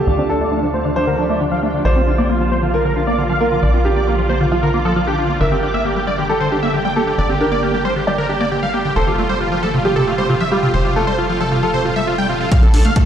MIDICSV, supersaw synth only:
0, 0, Header, 1, 2, 480
1, 0, Start_track
1, 0, Tempo, 444444
1, 78, Time_signature, 4, 2, 24, 8
1, 14098, End_track
2, 0, Start_track
2, 0, Title_t, "Supersaw synth"
2, 0, Program_c, 0, 81
2, 79, Note_on_c, 0, 74, 89
2, 176, Note_off_c, 0, 74, 0
2, 199, Note_on_c, 0, 62, 61
2, 296, Note_off_c, 0, 62, 0
2, 319, Note_on_c, 0, 62, 61
2, 416, Note_off_c, 0, 62, 0
2, 439, Note_on_c, 0, 74, 89
2, 536, Note_off_c, 0, 74, 0
2, 559, Note_on_c, 0, 62, 59
2, 656, Note_off_c, 0, 62, 0
2, 678, Note_on_c, 0, 62, 64
2, 776, Note_off_c, 0, 62, 0
2, 797, Note_on_c, 0, 72, 87
2, 895, Note_off_c, 0, 72, 0
2, 917, Note_on_c, 0, 62, 65
2, 1015, Note_off_c, 0, 62, 0
2, 1037, Note_on_c, 0, 62, 61
2, 1135, Note_off_c, 0, 62, 0
2, 1157, Note_on_c, 0, 70, 83
2, 1255, Note_off_c, 0, 70, 0
2, 1277, Note_on_c, 0, 62, 62
2, 1375, Note_off_c, 0, 62, 0
2, 1397, Note_on_c, 0, 74, 82
2, 1495, Note_off_c, 0, 74, 0
2, 1518, Note_on_c, 0, 62, 61
2, 1615, Note_off_c, 0, 62, 0
2, 1636, Note_on_c, 0, 77, 87
2, 1735, Note_off_c, 0, 77, 0
2, 1757, Note_on_c, 0, 62, 64
2, 1855, Note_off_c, 0, 62, 0
2, 1878, Note_on_c, 0, 62, 62
2, 1976, Note_off_c, 0, 62, 0
2, 1997, Note_on_c, 0, 74, 90
2, 2095, Note_off_c, 0, 74, 0
2, 2117, Note_on_c, 0, 65, 57
2, 2215, Note_off_c, 0, 65, 0
2, 2237, Note_on_c, 0, 65, 59
2, 2335, Note_off_c, 0, 65, 0
2, 2357, Note_on_c, 0, 74, 91
2, 2455, Note_off_c, 0, 74, 0
2, 2477, Note_on_c, 0, 65, 57
2, 2575, Note_off_c, 0, 65, 0
2, 2597, Note_on_c, 0, 65, 63
2, 2695, Note_off_c, 0, 65, 0
2, 2717, Note_on_c, 0, 72, 90
2, 2815, Note_off_c, 0, 72, 0
2, 2837, Note_on_c, 0, 65, 63
2, 2935, Note_off_c, 0, 65, 0
2, 2957, Note_on_c, 0, 65, 60
2, 3055, Note_off_c, 0, 65, 0
2, 3077, Note_on_c, 0, 70, 88
2, 3175, Note_off_c, 0, 70, 0
2, 3197, Note_on_c, 0, 65, 62
2, 3295, Note_off_c, 0, 65, 0
2, 3316, Note_on_c, 0, 74, 82
2, 3415, Note_off_c, 0, 74, 0
2, 3437, Note_on_c, 0, 65, 61
2, 3535, Note_off_c, 0, 65, 0
2, 3556, Note_on_c, 0, 77, 90
2, 3655, Note_off_c, 0, 77, 0
2, 3677, Note_on_c, 0, 65, 64
2, 3775, Note_off_c, 0, 65, 0
2, 3798, Note_on_c, 0, 65, 62
2, 3896, Note_off_c, 0, 65, 0
2, 3917, Note_on_c, 0, 74, 97
2, 4015, Note_off_c, 0, 74, 0
2, 4037, Note_on_c, 0, 65, 63
2, 4135, Note_off_c, 0, 65, 0
2, 4157, Note_on_c, 0, 65, 61
2, 4255, Note_off_c, 0, 65, 0
2, 4277, Note_on_c, 0, 74, 88
2, 4375, Note_off_c, 0, 74, 0
2, 4397, Note_on_c, 0, 65, 59
2, 4495, Note_off_c, 0, 65, 0
2, 4517, Note_on_c, 0, 65, 64
2, 4615, Note_off_c, 0, 65, 0
2, 4636, Note_on_c, 0, 72, 91
2, 4735, Note_off_c, 0, 72, 0
2, 4757, Note_on_c, 0, 65, 62
2, 4855, Note_off_c, 0, 65, 0
2, 4877, Note_on_c, 0, 65, 62
2, 4975, Note_off_c, 0, 65, 0
2, 4997, Note_on_c, 0, 70, 80
2, 5095, Note_off_c, 0, 70, 0
2, 5117, Note_on_c, 0, 65, 63
2, 5215, Note_off_c, 0, 65, 0
2, 5237, Note_on_c, 0, 69, 86
2, 5335, Note_off_c, 0, 69, 0
2, 5358, Note_on_c, 0, 65, 60
2, 5456, Note_off_c, 0, 65, 0
2, 5478, Note_on_c, 0, 67, 88
2, 5576, Note_off_c, 0, 67, 0
2, 5598, Note_on_c, 0, 65, 62
2, 5695, Note_off_c, 0, 65, 0
2, 5719, Note_on_c, 0, 65, 60
2, 5816, Note_off_c, 0, 65, 0
2, 5838, Note_on_c, 0, 76, 94
2, 5936, Note_off_c, 0, 76, 0
2, 5958, Note_on_c, 0, 67, 61
2, 6056, Note_off_c, 0, 67, 0
2, 6077, Note_on_c, 0, 67, 62
2, 6175, Note_off_c, 0, 67, 0
2, 6198, Note_on_c, 0, 76, 86
2, 6296, Note_off_c, 0, 76, 0
2, 6318, Note_on_c, 0, 67, 57
2, 6416, Note_off_c, 0, 67, 0
2, 6437, Note_on_c, 0, 67, 61
2, 6535, Note_off_c, 0, 67, 0
2, 6557, Note_on_c, 0, 74, 87
2, 6655, Note_off_c, 0, 74, 0
2, 6677, Note_on_c, 0, 67, 64
2, 6775, Note_off_c, 0, 67, 0
2, 6797, Note_on_c, 0, 67, 58
2, 6895, Note_off_c, 0, 67, 0
2, 6916, Note_on_c, 0, 72, 86
2, 7015, Note_off_c, 0, 72, 0
2, 7037, Note_on_c, 0, 67, 60
2, 7135, Note_off_c, 0, 67, 0
2, 7156, Note_on_c, 0, 76, 85
2, 7254, Note_off_c, 0, 76, 0
2, 7277, Note_on_c, 0, 67, 62
2, 7375, Note_off_c, 0, 67, 0
2, 7396, Note_on_c, 0, 79, 86
2, 7495, Note_off_c, 0, 79, 0
2, 7516, Note_on_c, 0, 67, 59
2, 7615, Note_off_c, 0, 67, 0
2, 7638, Note_on_c, 0, 67, 58
2, 7735, Note_off_c, 0, 67, 0
2, 7757, Note_on_c, 0, 74, 95
2, 7855, Note_off_c, 0, 74, 0
2, 7877, Note_on_c, 0, 67, 62
2, 7975, Note_off_c, 0, 67, 0
2, 7997, Note_on_c, 0, 67, 64
2, 8095, Note_off_c, 0, 67, 0
2, 8117, Note_on_c, 0, 74, 93
2, 8215, Note_off_c, 0, 74, 0
2, 8237, Note_on_c, 0, 67, 58
2, 8335, Note_off_c, 0, 67, 0
2, 8356, Note_on_c, 0, 67, 61
2, 8455, Note_off_c, 0, 67, 0
2, 8476, Note_on_c, 0, 72, 86
2, 8575, Note_off_c, 0, 72, 0
2, 8597, Note_on_c, 0, 67, 64
2, 8695, Note_off_c, 0, 67, 0
2, 8716, Note_on_c, 0, 67, 60
2, 8815, Note_off_c, 0, 67, 0
2, 8837, Note_on_c, 0, 70, 85
2, 8935, Note_off_c, 0, 70, 0
2, 8956, Note_on_c, 0, 67, 61
2, 9055, Note_off_c, 0, 67, 0
2, 9077, Note_on_c, 0, 74, 83
2, 9175, Note_off_c, 0, 74, 0
2, 9197, Note_on_c, 0, 67, 64
2, 9295, Note_off_c, 0, 67, 0
2, 9317, Note_on_c, 0, 77, 89
2, 9415, Note_off_c, 0, 77, 0
2, 9436, Note_on_c, 0, 67, 65
2, 9535, Note_off_c, 0, 67, 0
2, 9555, Note_on_c, 0, 67, 65
2, 9654, Note_off_c, 0, 67, 0
2, 9676, Note_on_c, 0, 72, 94
2, 9775, Note_off_c, 0, 72, 0
2, 9795, Note_on_c, 0, 65, 61
2, 9894, Note_off_c, 0, 65, 0
2, 9916, Note_on_c, 0, 65, 62
2, 10015, Note_off_c, 0, 65, 0
2, 10035, Note_on_c, 0, 72, 88
2, 10134, Note_off_c, 0, 72, 0
2, 10156, Note_on_c, 0, 65, 58
2, 10255, Note_off_c, 0, 65, 0
2, 10276, Note_on_c, 0, 65, 63
2, 10375, Note_off_c, 0, 65, 0
2, 10396, Note_on_c, 0, 69, 87
2, 10495, Note_off_c, 0, 69, 0
2, 10516, Note_on_c, 0, 65, 63
2, 10615, Note_off_c, 0, 65, 0
2, 10636, Note_on_c, 0, 65, 62
2, 10735, Note_off_c, 0, 65, 0
2, 10756, Note_on_c, 0, 69, 88
2, 10855, Note_off_c, 0, 69, 0
2, 10876, Note_on_c, 0, 65, 60
2, 10974, Note_off_c, 0, 65, 0
2, 10995, Note_on_c, 0, 72, 83
2, 11094, Note_off_c, 0, 72, 0
2, 11116, Note_on_c, 0, 65, 60
2, 11215, Note_off_c, 0, 65, 0
2, 11236, Note_on_c, 0, 76, 89
2, 11335, Note_off_c, 0, 76, 0
2, 11356, Note_on_c, 0, 65, 63
2, 11455, Note_off_c, 0, 65, 0
2, 11477, Note_on_c, 0, 65, 60
2, 11575, Note_off_c, 0, 65, 0
2, 11596, Note_on_c, 0, 72, 91
2, 11695, Note_off_c, 0, 72, 0
2, 11717, Note_on_c, 0, 65, 63
2, 11815, Note_off_c, 0, 65, 0
2, 11838, Note_on_c, 0, 65, 62
2, 11936, Note_off_c, 0, 65, 0
2, 11957, Note_on_c, 0, 72, 92
2, 12055, Note_off_c, 0, 72, 0
2, 12077, Note_on_c, 0, 65, 59
2, 12175, Note_off_c, 0, 65, 0
2, 12196, Note_on_c, 0, 65, 63
2, 12295, Note_off_c, 0, 65, 0
2, 12317, Note_on_c, 0, 69, 87
2, 12415, Note_off_c, 0, 69, 0
2, 12437, Note_on_c, 0, 65, 65
2, 12535, Note_off_c, 0, 65, 0
2, 12556, Note_on_c, 0, 65, 62
2, 12655, Note_off_c, 0, 65, 0
2, 12676, Note_on_c, 0, 72, 86
2, 12775, Note_off_c, 0, 72, 0
2, 12797, Note_on_c, 0, 65, 60
2, 12895, Note_off_c, 0, 65, 0
2, 12916, Note_on_c, 0, 76, 88
2, 13015, Note_off_c, 0, 76, 0
2, 13037, Note_on_c, 0, 65, 61
2, 13135, Note_off_c, 0, 65, 0
2, 13157, Note_on_c, 0, 79, 88
2, 13255, Note_off_c, 0, 79, 0
2, 13276, Note_on_c, 0, 65, 64
2, 13375, Note_off_c, 0, 65, 0
2, 13397, Note_on_c, 0, 65, 62
2, 13495, Note_off_c, 0, 65, 0
2, 13517, Note_on_c, 0, 77, 96
2, 13615, Note_off_c, 0, 77, 0
2, 13636, Note_on_c, 0, 69, 65
2, 13735, Note_off_c, 0, 69, 0
2, 13756, Note_on_c, 0, 69, 61
2, 13855, Note_off_c, 0, 69, 0
2, 13876, Note_on_c, 0, 77, 88
2, 13975, Note_off_c, 0, 77, 0
2, 13996, Note_on_c, 0, 69, 59
2, 14095, Note_off_c, 0, 69, 0
2, 14098, End_track
0, 0, End_of_file